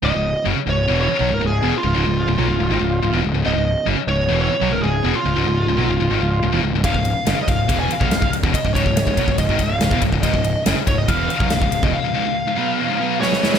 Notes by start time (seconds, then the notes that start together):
0.03 C#1 C#2 G#2 D#5
0.14 C#1 C#2 G#2
0.46 F#1 F#2 C#3
0.55 muted overdriven electric guitar stroke, muted distorted electric guitar stroke, muted picked electric bass stroke
0.67 C#1 C#2 G#2 C#5
0.88 E1 E2 B2 E3
1.01 C#5
1.09 muted overdriven electric guitar stroke, muted distorted electric guitar stroke, muted picked electric bass stroke
1.19 B1 B2 F#3
1.30 C#1 C#2 G#2 A#4
1.41 C#1 C#2 G#2
1.46 G#4
1.63 E1 E2 B2
1.73 muted distorted electric guitar stroke, muted overdriven electric guitar stroke, muted picked electric bass stroke
1.78 F4
1.83 C#1 C#2 G#2
1.94 C#1 C#2 G#2
2.06 C#1 C#2 G#2
2.27 C#1 C#2 G#2
2.38 B1 B2 F#3
2.49 C#1 C#2 G#2
2.59 C#1 C#2 G#2
2.70 G#1 G#2 D#3
2.80 C#1 C#2 G#2
3.02 C#1 C#2 G#2
3.13 E1 E2 B2
3.24 C#1 C#2 G#2
3.34 C#1 C#2 G#2
3.45 C#1 C#2 G#2 D#5
3.55 C#1 C#2 G#2
3.87 F#1 F#2 C#3
3.97 muted overdriven electric guitar stroke, muted picked electric bass stroke, muted distorted electric guitar stroke
4.07 C#1 C#2 G#2 C#5
4.29 E1 E2 B2 E3
4.41 C#5
4.50 muted overdriven electric guitar stroke, muted distorted electric guitar stroke, muted picked electric bass stroke
4.62 B1 B2 F#3
4.72 C#1 C#2 G#2 A#4
4.82 C#1 C#2 G#2 G#4
5.04 E1 E2 B2
5.14 F4, muted overdriven electric guitar stroke, muted distorted electric guitar stroke, muted picked electric bass stroke
5.26 C#1 C#2 G#2
5.36 C#1 C#2 G#2
5.47 C#1 C#2 G#2
5.68 C#1 C#2 G#2
5.78 B1 B2 F#3
5.89 C#1 C#2 G#2
6.00 C#1 C#2 G#2
6.10 G#1 G#2 D#3
6.21 C#1 C#2 G#2
6.42 C#1 C#2 G#2
6.52 E1 E2 B2
6.63 C#1 C#2 G#2
6.73 C#1 C#2 G#2
6.84 C#1 C#2 G#2 F5, kick, ride
6.94 C#1 C#2 G#2, kick
7.05 ride
7.27 F#1 F#2 C#3, snare, ride
7.37 muted overdriven electric guitar stroke, muted picked electric bass stroke, muted distorted electric guitar stroke
7.42 D#5
7.48 C#1 C#2 G#2 F5, kick, ride
7.68 E1 E2 B2 E3, kick, ride
7.80 G#5
7.90 F5, muted overdriven electric guitar stroke, muted distorted electric guitar stroke, muted picked electric bass stroke, ride
8.00 B1 B2 F#3, kick
8.11 C#1 C#2 G#2, snare, ride
8.22 C#1 C#2 G#2, kick
8.33 ride
8.43 E1 E2 B2, kick
8.53 D#5, muted overdriven electric guitar stroke, muted distorted electric guitar stroke, muted picked electric bass stroke, kick, ride
8.65 C#1 C#2 G#2, kick
8.74 C#1 C#2 G#2 C#5, kick, ride
8.86 C#1 C#2 G#2, kick
8.97 snare, ride
9.07 C#1 C#2 G#2, kick
9.17 B1 B2 F#3, kick, ride
9.28 C#1 C#2 G#2, kick
9.38 C#1 C#2 G#2 D#5, kick, ride
9.49 G#1 G#2 D#3, kick
9.59 C#1 C#2 G#2 F5, kick, ride
9.81 C#1 C#2 G#2, snare, ride
9.91 E1 E2 B2, kick
10.02 C#1 C#2 G#2, kick, ride
10.12 C#1 C#2 G#2, kick
10.22 C#1 C#2 G#2 D#5, kick, ride
10.34 C#1 C#2 G#2, kick
10.44 ride
10.66 F#1 F#2 C#3, snare, ride
10.77 muted overdriven electric guitar stroke, muted distorted electric guitar stroke, muted picked electric bass stroke
10.87 C#1 C#2 G#2 C#5, kick, ride
10.98 D#5
11.08 E1 E2 B2 E3 F5, kick, ride
11.29 muted overdriven electric guitar stroke, muted picked electric bass stroke, muted distorted electric guitar stroke, ride
11.40 B1 B2 F#3 F5, kick
11.50 C#1 C#2 G#2, snare, ride
11.62 C#1 C#2 G#2, kick
11.72 ride
11.83 E1 E2 B2 D#5, kick
11.94 F5, muted overdriven electric guitar stroke, muted distorted electric guitar stroke
12.04 C#2 G#2
12.14 C#2 G#2
12.26 C#2 G#2
12.47 C#2 G#2
12.56 B2 F#3 B3
12.78 E2 B2
12.89 C#2 G#2
13.00 B2 F#3 B3
13.20 B2 F#3 B3 G#4 C#5, snare
13.33 snare
13.41 E2 B2 E3, snare
13.54 snare